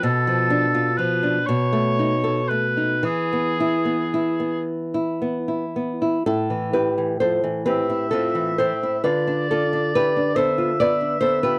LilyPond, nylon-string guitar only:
\new Staff \with { instrumentName = "Nylon-string guitar" } { \time 6/8 \key a \minor \tempo 4. = 42 << { r2. | r2. | <e' a'>8 <g' b'>8 <a' c''>8 <g' b'>8 <f' a'>8 <a' c''>8 | <f' b'>8 <f' a'>8 <g' b'>8 <a' c''>8 <b' d''>8 <a' c''>16 <g' b'>16 | } \\ { b,16 f16 d'16 f'16 f16 d'16 b,16 a16 dis'16 a'16 a16 dis'16 | e16 b16 e'16 b16 e'16 b8 e'16 b16 e'16 b16 e'16 | a,16 e16 e'16 e16 f16 e16 c'16 e'16 c'16 e16 c'16 e'16 | d16 d'8 d'16 e'16 d'16 b16 f'16 b16 d'16 b16 f'16 | } >> }